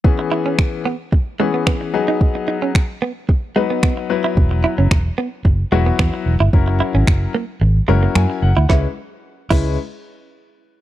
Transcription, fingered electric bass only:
\new Staff \with { instrumentName = "Fingered electric bass" } { \clef bass \time 4/4 \key cis \dorian \tempo 4 = 111 r1 | r1 | e,,8. fis,,16 e,,8 r8 fis,,8 e,,8 e,16 r16 e,,16 g,,16 | fis,,8. gis,,16 fis,,8 r8 gis,,8 fis,,8 fis,16 r16 fis,,16 d,16 |
r4. cis,8 r2 | }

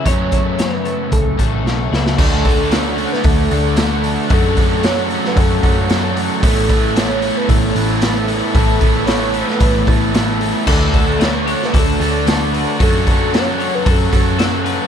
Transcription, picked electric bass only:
\new Staff \with { instrumentName = "Picked electric bass" } { \clef bass \time 4/4 \key d \lydian \tempo 4 = 113 fis,2 cis,8 a,,8 b,,8 cis,8 | d,2 d,8 d,4. | fis,2 fis,8 fis,4. | a,,2 a,,8 a,,4. |
a,,2 a,,8 a,,4. | d,2 d,8 d,4. | fis,2 fis,8 fis,4. | }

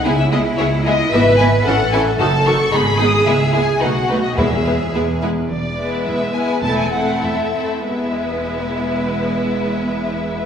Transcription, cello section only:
\new Staff \with { instrumentName = "Cello section" } { \time 2/4 \key e \major \tempo 4 = 107 e'2 | b'4 a'4 | a'4 gis'4~ | gis'4 fis'4 |
gis'4. r8 | e,4 e,4 | e,4 e,4 | e,2~ |
e,2 | }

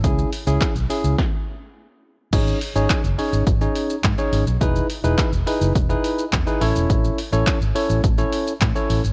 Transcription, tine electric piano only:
\new Staff \with { instrumentName = "Tine electric piano" } { \time 4/4 \key gis \phrygian \tempo 4 = 105 <cis' e' gis'>8 r16 <cis' e' gis'>8 r16 <cis' e' gis'>8 r2 | <cis' dis' gis' cis''>8 r16 <cis' dis' gis' cis''>8 r16 <cis' dis' gis' cis''>8 r16 <cis' dis' gis' cis''>8 r8 <cis' dis' gis' cis''>8 r16 | <dis' e' gis' b'>8 r16 <dis' e' gis' b'>8 r16 <dis' e' gis' b'>8 r16 <dis' e' gis' b'>8 r8 <dis' e' gis' b'>16 <cis' e' a' cis''>8~ | <cis' e' a' cis''>8 r16 <cis' e' a' cis''>8 r16 <cis' e' a' cis''>8 r16 <cis' e' a' cis''>8 r8 <cis' e' a' cis''>8 r16 | }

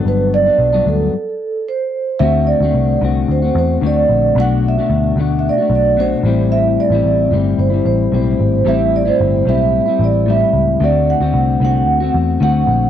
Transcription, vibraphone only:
\new Staff \with { instrumentName = "Vibraphone" } { \time 4/4 \key d \mixolydian \tempo 4 = 112 b'8 d''4 a'4. c''4 | e''8 d''4 r8 c''8 c''8 d''4 | fis''8 e''4 r16. e''32 d''8 d''8 c''4 | e''8 d''4 r8 c''8 c''8 c''4 |
e''8 d''16 c''8. e''4 d''8 e''4 | d''8 fis''4 fis''4 r8 fis''4 | }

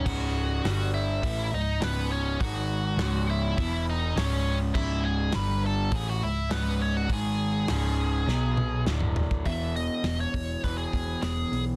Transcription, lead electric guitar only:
\new Staff \with { instrumentName = "Lead electric guitar" } { \time 4/4 \key cis \minor \tempo 4 = 102 <fis' fis''>4. <e' e''>4 <dis' dis''>8 <b b'>8 <cis' cis''>8 | <fis' fis''>4. <e' e''>4 <dis' dis''>8 <cis' cis''>8. r16 | <e' e''>8 <gis' gis''>8 <b' b''>8 <a' a''>8 <gis' gis''>16 <fis' fis''>16 <e' e''>8 <b b'>8 <cis' cis''>16 <fis' fis''>16 | <gis' gis''>2. r4 |
e''8 dis''8. cis''8. b'16 gis'8. gis'8. r16 | }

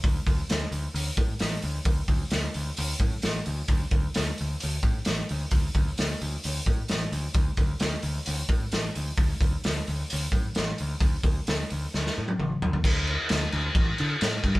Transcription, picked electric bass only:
\new Staff \with { instrumentName = "Picked electric bass" } { \clef bass \time 4/4 \key c \lydian \tempo 4 = 131 d,8 d,8 d,8 d,8 d,8 a,8 a,,8 d,8 | d,8 d,8 d,8 d,8 d,8 a,8 a,,8 d,8 | d,8 d,8 d,8 d,8 d,8 a,8 a,,8 d,8 | d,8 d,8 d,8 d,8 d,8 a,8 a,,8 d,8 |
d,8 d,8 d,8 d,8 d,8 a,8 a,,8 d,8 | d,8 d,8 d,8 d,8 d,8 a,8 a,,8 d,8 | d,8 d,8 d,8 d,8 d,8 a,8 a,,8 d,8 | d,4 d,8 d,8 a,,8 d8 a,8 g,8 | }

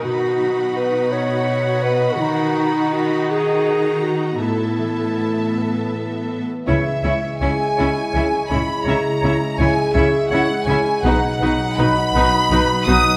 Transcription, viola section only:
\new Staff \with { instrumentName = "Viola section" } { \time 6/8 \key cis \dorian \tempo 4. = 55 << { fis'2.~ | fis'2. | a'2~ a'8 r8 | e'8 e'8 e'8 e'8 e'8 e'8 |
e'8 e'8 e'8 e'8 e'8 e'8 | dis'8 dis'8 dis'8 dis'8 dis'8 dis'8 | } \\ { dis'2. | dis'2. | b2~ b8 r8 | cis'8 cis'8 cis'8 cis'8 cis'8 cis'8 |
cis'8 cis'8 cis'8 cis'8 cis'8 cis'8 | dis'8 dis'8 dis'8 dis'8 dis'8 dis'8 | } >> }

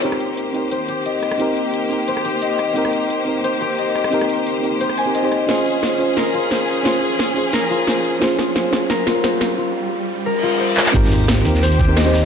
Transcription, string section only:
\new Staff \with { instrumentName = "String section" } { \time 4/4 \key aes \major \tempo 4 = 176 <bes g' c''>1~ | <bes g' c''>1~ | <bes g' c''>1~ | <bes g' c''>1 |
<des' aes'>1~ | <des' aes'>1~ | <des' aes'>1 | r1 |
<bes g' c''>1 | }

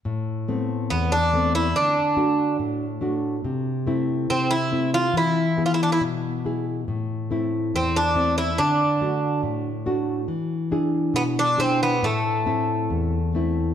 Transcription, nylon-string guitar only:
\new Staff \with { instrumentName = "Nylon-string guitar" } { \time 2/4 \key a \minor \tempo 4 = 70 a,8 <a b c'>8 e,8 <a b c'>8 | d8 <a d' fis'>8 a,8 <a d' fis'>8 | c8 <a c' e'>8 c8 <a c' e'>8 | e8 <b e' gis'>8 b,8 <b e' gis'>8 |
a,8 <a c' e'>8 e,8 <a c' e'>8 | d8 <a d' fis'>8 a,8 <a d' fis'>8 | e8 <d' e' gis'>8 b,8 <d' e' gis'>8 | a,8 <a c' e'>8 e,8 <a c' e'>8 | }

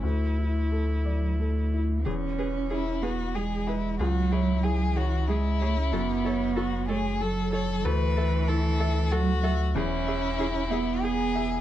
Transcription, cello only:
\new Staff \with { instrumentName = "Cello" } { \time 3/4 \key e \mixolydian \tempo 4 = 93 a4. fis8 a4 | cis'4. b8 gis4 | fis4. e8 gis8 a16 cis'16 | b4. a8 fis4 |
e2 fis8 r8 | cis'4. b4. | }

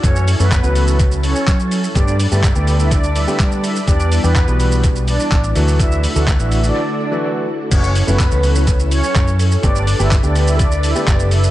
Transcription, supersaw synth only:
\new Staff \with { instrumentName = "Supersaw synth" } { \time 4/4 \key fis \phrygian \tempo 4 = 125 <cis' cis''>8 r16 <b b'>8. r4 <cis' cis''>8. r8. | <d' d''>8 r16 <e' e''>16 r16 <d' d''>16 r16 <e' e''>16 <d' d''>8 <e' e''>16 r16 <d' d''>16 r16 <e' e''>16 r16 | <d' d''>8 r16 <b b'>8. r4 <d' d''>8. r8. | <e' e''>8 r16 <fis' fis''>16 r16 <e' e''>16 r16 <d' d''>8 r16 <d' d''>16 r4 r16 |
<cis' cis''>8 r16 <b b'>8. r4 <cis' cis''>8. r8. | <d' d''>8 r16 <e' e''>16 r16 <d' d''>16 r16 <e' e''>16 <d' d''>8 <e' e''>16 r16 <d' d''>16 r16 <e' e''>16 r16 | }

